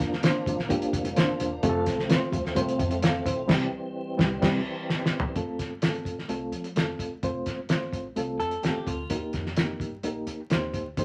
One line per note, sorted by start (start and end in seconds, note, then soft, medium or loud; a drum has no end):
0.00 0.29 F2 medium
0.00 3.46 F3 medium
0.00 0.12 A#3 loud
0.00 1.61 A#3 medium
0.00 0.12 D4 medium
0.00 1.61 D4 medium
0.00 0.13 F4 loud
0.00 0.13 A#4 loud
0.00 kick medium
0.00 snare soft
0.12 snare soft
0.12 high conga medium
0.23 0.59 A#3 medium
0.23 0.59 D4 medium
0.23 0.59 F4 medium
0.23 0.59 C5 medium
0.23 snare loud
0.23 closed hi-hat medium
0.23 high conga medium
0.46 0.56 A1 medium
0.46 kick medium
0.46 closed hi-hat medium
0.46 muted conga soft
0.46 high conga medium
0.46 low conga medium
0.58 0.68 A#1 medium
0.58 snare soft
0.69 1.05 A#3 medium
0.69 1.05 D4 medium
0.69 1.05 F4 medium
0.69 1.06 G4 loud
0.69 kick medium
0.69 closed hi-hat medium
0.69 muted conga soft
0.69 high conga medium
0.82 muted upright bass stroke soft
0.82 closed hi-hat medium
0.93 1.33 F1 medium
0.93 kick medium
0.93 closed hi-hat medium
1.04 closed hi-hat medium
1.04 high conga medium
1.16 1.52 A#3 medium
1.16 1.22 C4 medium
1.16 1.52 F4 medium
1.16 1.52 C5 medium
1.16 snare loud
1.16 closed hi-hat medium
1.22 1.55 D4 medium
1.40 1.59 E1 medium
1.40 closed hi-hat medium
1.40 low conga medium
1.63 1.83 F1 loud
1.63 1.98 A3 loud
1.63 3.48 A3 medium
1.63 1.99 C4 medium
1.63 5.33 C4 medium
1.63 1.99 F4 loud
1.63 1.69 G4 medium
1.63 kick loud
1.63 closed hi-hat loud
1.69 2.02 A4 loud
1.86 2.16 C2 medium
1.86 kick medium
1.86 snare soft
1.86 closed hi-hat medium
1.86 muted conga soft
1.97 snare soft
1.97 high conga medium
2.09 2.45 A3 medium
2.09 2.45 C4 medium
2.09 2.45 F4 medium
2.09 2.15 B4 medium
2.09 snare loud
2.09 closed hi-hat medium
2.09 muted conga soft
2.09 high conga medium
2.15 2.48 C5 medium
2.32 2.43 D2 medium
2.32 kick medium
2.32 closed hi-hat medium
2.32 high conga medium
2.32 low conga medium
2.44 2.54 E2 medium
2.44 snare soft
2.55 2.76 C2 medium
2.55 2.61 G3 medium
2.55 2.92 C4 medium
2.55 2.92 F4 medium
2.55 2.92 C5 loud
2.55 kick medium
2.55 closed hi-hat medium
2.55 high conga medium
2.61 2.94 A3 medium
2.69 closed hi-hat medium
2.79 3.19 F2 loud
2.79 kick medium
2.79 closed hi-hat medium
2.90 closed hi-hat medium
2.90 high conga medium
3.02 3.25 A4 medium
3.02 3.25 F5 medium
3.02 snare loud
3.02 closed hi-hat loud
3.02 muted conga soft
3.25 3.46 B1 medium
3.25 3.48 E4 medium
3.25 3.48 C5 medium
3.25 kick medium
3.25 closed hi-hat medium
3.25 muted conga soft
3.25 low conga medium
3.48 3.65 C2 loud
3.48 5.34 E3 medium
3.48 3.64 G3 medium
3.48 5.34 G3 medium
3.48 3.65 C4 loud
3.48 3.65 E4 loud
3.48 kick loud
3.48 snare loud
3.48 crash medium
3.55 3.68 G4 loud
4.18 4.35 C2 loud
4.18 4.34 G3 medium
4.18 4.34 C4 loud
4.18 4.35 E4 medium
4.18 kick loud
4.18 snare loud
4.25 4.38 G4 medium
4.42 4.58 C2 loud
4.42 4.58 G3 loud
4.42 4.58 C4 loud
4.42 4.59 G4 loud
4.42 kick loud
4.42 snare loud
4.42 crash medium
4.48 4.62 E4 loud
4.90 snare medium
5.06 snare medium
5.20 floor tom loud
5.35 5.56 F2 medium
5.35 5.71 A3 medium
5.35 5.71 C4 medium
5.35 5.71 F4 medium
5.35 5.72 A4 medium
5.35 kick medium
5.35 closed hi-hat medium
5.59 6.05 G2 medium
5.59 kick medium
5.59 snare soft
5.59 closed hi-hat medium
5.82 6.18 A3 medium
5.82 6.18 C4 medium
5.82 6.19 F4 medium
5.82 5.89 G#4 medium
5.82 snare loud
5.82 closed hi-hat medium
5.89 6.21 A4 medium
5.94 closed hi-hat soft
6.05 6.25 A2 medium
6.05 kick medium
6.05 closed hi-hat medium
6.19 snare soft
6.28 6.49 C2 medium
6.28 6.65 A3 medium
6.28 6.65 C4 medium
6.28 6.65 F4 medium
6.28 6.65 A4 medium
6.28 closed hi-hat medium
6.52 6.72 F3 medium
6.52 closed hi-hat medium
6.64 closed hi-hat soft
6.75 6.96 F2 medium
6.75 7.12 A3 medium
6.75 7.12 C4 medium
6.75 7.12 F4 medium
6.75 7.12 A4 medium
6.75 snare loud
6.75 closed hi-hat medium
6.99 7.19 E2 medium
6.99 kick medium
6.99 closed hi-hat medium
7.23 7.43 F1 medium
7.23 7.59 A3 medium
7.23 7.59 C4 medium
7.23 7.59 F4 medium
7.23 7.59 C5 medium
7.23 kick medium
7.23 closed hi-hat medium
7.46 7.86 G1 medium
7.46 kick medium
7.46 snare soft
7.46 closed hi-hat medium
7.69 8.06 A3 medium
7.69 8.06 C4 medium
7.69 8.06 F4 medium
7.69 8.06 C5 medium
7.69 snare loud
7.69 closed hi-hat medium
7.92 8.12 A1 medium
7.92 kick medium
7.92 closed hi-hat medium
8.16 8.36 C2 medium
8.16 8.52 A3 medium
8.16 8.52 C4 medium
8.16 8.52 F4 medium
8.16 8.53 A4 medium
8.16 closed hi-hat medium
8.39 8.59 F2 medium
8.39 8.63 A4 medium
8.39 closed hi-hat medium
8.51 closed hi-hat medium
8.62 8.83 F2 medium
8.62 8.99 A3 medium
8.62 8.99 C4 medium
8.62 9.00 F4 medium
8.62 8.87 G4 medium
8.62 8.70 G4 medium
8.62 snare medium
8.62 closed hi-hat medium
8.70 9.03 A4 medium
8.86 9.06 D2 medium
8.86 9.32 F4 medium
8.86 kick medium
8.86 closed hi-hat medium
9.10 9.30 D#2 medium
9.10 9.46 A#3 medium
9.10 9.46 D#4 medium
9.10 9.16 F#4 medium
9.10 9.46 A#4 medium
9.10 kick medium
9.10 closed hi-hat medium
9.16 9.49 G4 medium
9.33 9.73 F2 medium
9.33 kick medium
9.33 snare soft
9.33 closed hi-hat medium
9.46 snare soft
9.56 9.93 A#3 medium
9.56 9.93 D#4 medium
9.56 9.63 F4 medium
9.56 9.93 A#4 medium
9.56 snare loud
9.56 closed hi-hat medium
9.64 9.96 G4 medium
9.80 10.00 G2 medium
9.80 kick medium
9.80 closed hi-hat medium
10.03 10.23 A#1 medium
10.03 10.39 A#3 medium
10.03 10.40 D#4 medium
10.03 10.40 G4 medium
10.03 10.40 A#4 medium
10.03 closed hi-hat medium
10.27 10.47 D#3 medium
10.27 closed hi-hat medium
10.50 10.70 D#2 medium
10.50 10.86 A#3 medium
10.50 10.86 D#4 medium
10.50 10.86 G4 medium
10.50 10.87 C5 medium
10.50 snare loud
10.50 closed hi-hat medium
10.73 10.93 D2 medium
10.73 kick medium
10.73 closed hi-hat medium
10.97 11.05 D#2 medium
10.97 11.05 A#3 medium
10.97 11.05 D#4 medium
10.97 11.05 G4 medium
10.97 11.05 C5 medium
10.97 kick medium
10.97 closed hi-hat medium